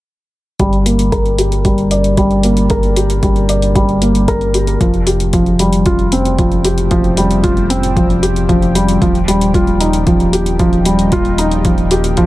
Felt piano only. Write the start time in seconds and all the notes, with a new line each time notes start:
0.60 G3
0.86 A#3
1.12 A#4
1.39 G4
1.65 G3
1.91 D5
2.18 G3
2.44 A#3
2.71 A#4
2.97 G4
3.23 G3
3.49 D5
3.76 G3
4.02 A#3
4.28 A#4
4.55 G4
4.81 F3
5.07 G4
5.33 F3
5.60 G3
5.86 F4
6.13 C4
6.39 F3
6.65 G4
6.91 F3
7.17 G3
7.43 F4
7.70 C4
7.96 F3
8.23 G4
8.49 F3
8.75 G3
9.02 F3
9.28 G3
9.54 F4
9.80 D#4
10.06 F3
10.33 G4
10.59 F3
10.86 G3
11.12 F4
11.39 D#4
11.65 F3
11.91 G4
12.17 F3